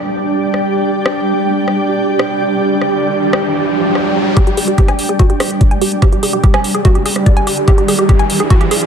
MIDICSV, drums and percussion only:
0, 0, Header, 1, 2, 480
1, 0, Start_track
1, 0, Tempo, 413793
1, 1225, Time_signature, 4, 2, 24, 8
1, 10279, End_track
2, 0, Start_track
2, 0, Title_t, "Drums"
2, 625, Note_on_c, 9, 37, 37
2, 741, Note_off_c, 9, 37, 0
2, 1225, Note_on_c, 9, 37, 77
2, 1341, Note_off_c, 9, 37, 0
2, 1945, Note_on_c, 9, 37, 37
2, 2061, Note_off_c, 9, 37, 0
2, 2545, Note_on_c, 9, 37, 73
2, 2661, Note_off_c, 9, 37, 0
2, 3265, Note_on_c, 9, 37, 39
2, 3381, Note_off_c, 9, 37, 0
2, 3865, Note_on_c, 9, 37, 78
2, 3981, Note_off_c, 9, 37, 0
2, 4585, Note_on_c, 9, 37, 40
2, 4701, Note_off_c, 9, 37, 0
2, 5065, Note_on_c, 9, 36, 115
2, 5065, Note_on_c, 9, 42, 70
2, 5181, Note_off_c, 9, 36, 0
2, 5181, Note_off_c, 9, 42, 0
2, 5185, Note_on_c, 9, 42, 40
2, 5301, Note_off_c, 9, 42, 0
2, 5305, Note_on_c, 9, 46, 108
2, 5421, Note_off_c, 9, 46, 0
2, 5425, Note_on_c, 9, 42, 40
2, 5541, Note_off_c, 9, 42, 0
2, 5545, Note_on_c, 9, 36, 117
2, 5545, Note_on_c, 9, 42, 66
2, 5661, Note_off_c, 9, 36, 0
2, 5661, Note_off_c, 9, 42, 0
2, 5665, Note_on_c, 9, 37, 38
2, 5665, Note_on_c, 9, 42, 41
2, 5781, Note_off_c, 9, 37, 0
2, 5781, Note_off_c, 9, 42, 0
2, 5785, Note_on_c, 9, 46, 93
2, 5901, Note_off_c, 9, 46, 0
2, 5905, Note_on_c, 9, 42, 39
2, 6021, Note_off_c, 9, 42, 0
2, 6025, Note_on_c, 9, 36, 113
2, 6025, Note_on_c, 9, 42, 72
2, 6141, Note_off_c, 9, 36, 0
2, 6141, Note_off_c, 9, 42, 0
2, 6145, Note_on_c, 9, 42, 41
2, 6261, Note_off_c, 9, 42, 0
2, 6265, Note_on_c, 9, 37, 78
2, 6265, Note_on_c, 9, 46, 107
2, 6381, Note_off_c, 9, 37, 0
2, 6381, Note_off_c, 9, 46, 0
2, 6386, Note_on_c, 9, 42, 38
2, 6502, Note_off_c, 9, 42, 0
2, 6505, Note_on_c, 9, 36, 113
2, 6505, Note_on_c, 9, 42, 70
2, 6621, Note_off_c, 9, 36, 0
2, 6621, Note_off_c, 9, 42, 0
2, 6626, Note_on_c, 9, 42, 40
2, 6742, Note_off_c, 9, 42, 0
2, 6745, Note_on_c, 9, 46, 98
2, 6861, Note_off_c, 9, 46, 0
2, 6865, Note_on_c, 9, 42, 41
2, 6981, Note_off_c, 9, 42, 0
2, 6985, Note_on_c, 9, 36, 116
2, 6985, Note_on_c, 9, 37, 38
2, 6985, Note_on_c, 9, 42, 68
2, 7101, Note_off_c, 9, 36, 0
2, 7101, Note_off_c, 9, 37, 0
2, 7101, Note_off_c, 9, 42, 0
2, 7105, Note_on_c, 9, 42, 40
2, 7221, Note_off_c, 9, 42, 0
2, 7225, Note_on_c, 9, 46, 113
2, 7341, Note_off_c, 9, 46, 0
2, 7345, Note_on_c, 9, 42, 41
2, 7461, Note_off_c, 9, 42, 0
2, 7465, Note_on_c, 9, 36, 127
2, 7465, Note_on_c, 9, 42, 65
2, 7581, Note_off_c, 9, 36, 0
2, 7581, Note_off_c, 9, 42, 0
2, 7585, Note_on_c, 9, 37, 73
2, 7585, Note_on_c, 9, 42, 40
2, 7701, Note_off_c, 9, 37, 0
2, 7701, Note_off_c, 9, 42, 0
2, 7705, Note_on_c, 9, 46, 98
2, 7821, Note_off_c, 9, 46, 0
2, 7825, Note_on_c, 9, 42, 40
2, 7941, Note_off_c, 9, 42, 0
2, 7945, Note_on_c, 9, 36, 118
2, 7945, Note_on_c, 9, 42, 66
2, 8061, Note_off_c, 9, 36, 0
2, 8061, Note_off_c, 9, 42, 0
2, 8065, Note_on_c, 9, 42, 41
2, 8181, Note_off_c, 9, 42, 0
2, 8185, Note_on_c, 9, 46, 114
2, 8301, Note_off_c, 9, 46, 0
2, 8305, Note_on_c, 9, 37, 36
2, 8421, Note_off_c, 9, 37, 0
2, 8425, Note_on_c, 9, 36, 119
2, 8425, Note_on_c, 9, 42, 67
2, 8541, Note_off_c, 9, 36, 0
2, 8541, Note_off_c, 9, 42, 0
2, 8545, Note_on_c, 9, 42, 41
2, 8661, Note_off_c, 9, 42, 0
2, 8665, Note_on_c, 9, 46, 100
2, 8781, Note_off_c, 9, 46, 0
2, 8785, Note_on_c, 9, 42, 40
2, 8901, Note_off_c, 9, 42, 0
2, 8905, Note_on_c, 9, 36, 102
2, 8905, Note_on_c, 9, 42, 67
2, 9021, Note_off_c, 9, 36, 0
2, 9021, Note_off_c, 9, 42, 0
2, 9025, Note_on_c, 9, 42, 38
2, 9141, Note_off_c, 9, 42, 0
2, 9145, Note_on_c, 9, 46, 115
2, 9261, Note_off_c, 9, 46, 0
2, 9265, Note_on_c, 9, 42, 39
2, 9381, Note_off_c, 9, 42, 0
2, 9385, Note_on_c, 9, 36, 107
2, 9385, Note_on_c, 9, 42, 61
2, 9501, Note_off_c, 9, 36, 0
2, 9501, Note_off_c, 9, 42, 0
2, 9505, Note_on_c, 9, 42, 39
2, 9621, Note_off_c, 9, 42, 0
2, 9625, Note_on_c, 9, 46, 101
2, 9741, Note_off_c, 9, 46, 0
2, 9745, Note_on_c, 9, 42, 38
2, 9861, Note_off_c, 9, 42, 0
2, 9865, Note_on_c, 9, 36, 97
2, 9865, Note_on_c, 9, 42, 66
2, 9981, Note_off_c, 9, 36, 0
2, 9981, Note_off_c, 9, 42, 0
2, 9985, Note_on_c, 9, 42, 39
2, 10101, Note_off_c, 9, 42, 0
2, 10105, Note_on_c, 9, 46, 117
2, 10221, Note_off_c, 9, 46, 0
2, 10225, Note_on_c, 9, 42, 38
2, 10279, Note_off_c, 9, 42, 0
2, 10279, End_track
0, 0, End_of_file